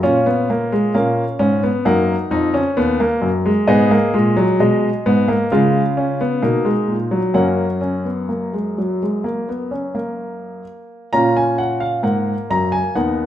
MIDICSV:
0, 0, Header, 1, 2, 480
1, 0, Start_track
1, 0, Key_signature, 6, "major"
1, 0, Tempo, 911854
1, 16, Time_signature, 4, 2, 24, 8
1, 2896, Tempo, 938967
1, 5776, Tempo, 920245
1, 6884, End_track
2, 0, Start_track
2, 0, Title_t, "Grand piano"
2, 0, Program_c, 0, 0
2, 16, Note_on_c, 0, 61, 87
2, 17, Note_on_c, 0, 46, 72
2, 17, Note_on_c, 0, 73, 68
2, 18, Note_on_c, 0, 65, 80
2, 133, Note_off_c, 0, 61, 0
2, 139, Note_on_c, 0, 59, 84
2, 254, Note_off_c, 0, 59, 0
2, 263, Note_on_c, 0, 58, 75
2, 376, Note_off_c, 0, 58, 0
2, 381, Note_on_c, 0, 56, 80
2, 483, Note_off_c, 0, 46, 0
2, 483, Note_off_c, 0, 65, 0
2, 483, Note_off_c, 0, 73, 0
2, 496, Note_off_c, 0, 56, 0
2, 497, Note_on_c, 0, 46, 70
2, 497, Note_on_c, 0, 77, 69
2, 498, Note_on_c, 0, 58, 77
2, 498, Note_on_c, 0, 61, 67
2, 646, Note_off_c, 0, 46, 0
2, 647, Note_off_c, 0, 58, 0
2, 726, Note_off_c, 0, 61, 0
2, 733, Note_on_c, 0, 44, 74
2, 734, Note_on_c, 0, 61, 92
2, 852, Note_off_c, 0, 61, 0
2, 860, Note_on_c, 0, 59, 85
2, 883, Note_off_c, 0, 44, 0
2, 962, Note_off_c, 0, 77, 0
2, 975, Note_off_c, 0, 59, 0
2, 976, Note_on_c, 0, 42, 75
2, 976, Note_on_c, 0, 63, 72
2, 976, Note_on_c, 0, 78, 80
2, 978, Note_on_c, 0, 58, 91
2, 1124, Note_off_c, 0, 42, 0
2, 1126, Note_off_c, 0, 58, 0
2, 1209, Note_off_c, 0, 63, 0
2, 1215, Note_on_c, 0, 41, 72
2, 1217, Note_on_c, 0, 63, 88
2, 1333, Note_off_c, 0, 63, 0
2, 1337, Note_on_c, 0, 61, 93
2, 1363, Note_off_c, 0, 41, 0
2, 1452, Note_off_c, 0, 61, 0
2, 1458, Note_on_c, 0, 59, 96
2, 1459, Note_on_c, 0, 39, 84
2, 1572, Note_off_c, 0, 59, 0
2, 1580, Note_on_c, 0, 58, 94
2, 1606, Note_off_c, 0, 39, 0
2, 1692, Note_on_c, 0, 42, 74
2, 1727, Note_off_c, 0, 58, 0
2, 1819, Note_on_c, 0, 56, 85
2, 1842, Note_off_c, 0, 42, 0
2, 1913, Note_off_c, 0, 78, 0
2, 1933, Note_off_c, 0, 56, 0
2, 1934, Note_on_c, 0, 75, 86
2, 1936, Note_on_c, 0, 44, 91
2, 1937, Note_on_c, 0, 68, 86
2, 1939, Note_on_c, 0, 59, 96
2, 2053, Note_off_c, 0, 59, 0
2, 2059, Note_on_c, 0, 58, 89
2, 2084, Note_off_c, 0, 44, 0
2, 2174, Note_off_c, 0, 58, 0
2, 2178, Note_on_c, 0, 46, 79
2, 2178, Note_on_c, 0, 56, 90
2, 2293, Note_off_c, 0, 56, 0
2, 2298, Note_on_c, 0, 54, 93
2, 2326, Note_off_c, 0, 46, 0
2, 2401, Note_off_c, 0, 75, 0
2, 2414, Note_off_c, 0, 54, 0
2, 2418, Note_on_c, 0, 47, 77
2, 2422, Note_on_c, 0, 56, 86
2, 2423, Note_on_c, 0, 75, 74
2, 2567, Note_off_c, 0, 47, 0
2, 2569, Note_off_c, 0, 56, 0
2, 2663, Note_on_c, 0, 44, 77
2, 2664, Note_on_c, 0, 59, 97
2, 2777, Note_off_c, 0, 59, 0
2, 2781, Note_on_c, 0, 58, 88
2, 2810, Note_off_c, 0, 44, 0
2, 2877, Note_off_c, 0, 68, 0
2, 2886, Note_off_c, 0, 75, 0
2, 2895, Note_off_c, 0, 58, 0
2, 2905, Note_on_c, 0, 49, 84
2, 2905, Note_on_c, 0, 65, 81
2, 2905, Note_on_c, 0, 77, 76
2, 2906, Note_on_c, 0, 56, 86
2, 3050, Note_off_c, 0, 56, 0
2, 3136, Note_on_c, 0, 61, 76
2, 3250, Note_off_c, 0, 61, 0
2, 3257, Note_on_c, 0, 59, 85
2, 3360, Note_off_c, 0, 49, 0
2, 3360, Note_off_c, 0, 65, 0
2, 3368, Note_on_c, 0, 47, 73
2, 3368, Note_on_c, 0, 58, 79
2, 3368, Note_on_c, 0, 63, 75
2, 3370, Note_off_c, 0, 59, 0
2, 3482, Note_on_c, 0, 56, 77
2, 3485, Note_off_c, 0, 58, 0
2, 3517, Note_off_c, 0, 47, 0
2, 3599, Note_on_c, 0, 46, 64
2, 3633, Note_off_c, 0, 56, 0
2, 3719, Note_on_c, 0, 54, 74
2, 3751, Note_off_c, 0, 46, 0
2, 3833, Note_off_c, 0, 77, 0
2, 3834, Note_off_c, 0, 63, 0
2, 3836, Note_on_c, 0, 58, 76
2, 3838, Note_on_c, 0, 61, 67
2, 3838, Note_on_c, 0, 78, 76
2, 3839, Note_on_c, 0, 42, 67
2, 3841, Note_off_c, 0, 54, 0
2, 3990, Note_off_c, 0, 58, 0
2, 4069, Note_off_c, 0, 61, 0
2, 4077, Note_on_c, 0, 61, 66
2, 4198, Note_on_c, 0, 59, 60
2, 4201, Note_off_c, 0, 61, 0
2, 4321, Note_on_c, 0, 58, 58
2, 4322, Note_off_c, 0, 59, 0
2, 4444, Note_off_c, 0, 58, 0
2, 4446, Note_on_c, 0, 56, 55
2, 4567, Note_off_c, 0, 56, 0
2, 4573, Note_on_c, 0, 54, 61
2, 4691, Note_off_c, 0, 54, 0
2, 4698, Note_on_c, 0, 56, 58
2, 4808, Note_on_c, 0, 58, 65
2, 4813, Note_off_c, 0, 56, 0
2, 4929, Note_off_c, 0, 58, 0
2, 4934, Note_on_c, 0, 59, 57
2, 5048, Note_on_c, 0, 61, 55
2, 5052, Note_off_c, 0, 59, 0
2, 5168, Note_on_c, 0, 58, 61
2, 5169, Note_off_c, 0, 61, 0
2, 5511, Note_off_c, 0, 78, 0
2, 5512, Note_off_c, 0, 42, 0
2, 5753, Note_off_c, 0, 58, 0
2, 5771, Note_on_c, 0, 82, 91
2, 5774, Note_on_c, 0, 61, 67
2, 5774, Note_on_c, 0, 65, 73
2, 5777, Note_on_c, 0, 46, 71
2, 5891, Note_off_c, 0, 82, 0
2, 5896, Note_on_c, 0, 80, 76
2, 6009, Note_on_c, 0, 78, 78
2, 6013, Note_off_c, 0, 80, 0
2, 6125, Note_on_c, 0, 77, 79
2, 6129, Note_off_c, 0, 78, 0
2, 6241, Note_off_c, 0, 61, 0
2, 6242, Note_off_c, 0, 46, 0
2, 6242, Note_on_c, 0, 58, 64
2, 6245, Note_on_c, 0, 44, 61
2, 6246, Note_on_c, 0, 78, 71
2, 6247, Note_off_c, 0, 77, 0
2, 6396, Note_off_c, 0, 44, 0
2, 6397, Note_off_c, 0, 78, 0
2, 6490, Note_on_c, 0, 42, 68
2, 6491, Note_on_c, 0, 82, 86
2, 6603, Note_on_c, 0, 80, 79
2, 6609, Note_off_c, 0, 82, 0
2, 6640, Note_off_c, 0, 42, 0
2, 6713, Note_off_c, 0, 58, 0
2, 6713, Note_off_c, 0, 65, 0
2, 6725, Note_off_c, 0, 80, 0
2, 6725, Note_on_c, 0, 59, 65
2, 6725, Note_on_c, 0, 63, 66
2, 6725, Note_on_c, 0, 78, 76
2, 6726, Note_on_c, 0, 39, 68
2, 6877, Note_off_c, 0, 78, 0
2, 6884, Note_off_c, 0, 39, 0
2, 6884, Note_off_c, 0, 59, 0
2, 6884, Note_off_c, 0, 63, 0
2, 6884, End_track
0, 0, End_of_file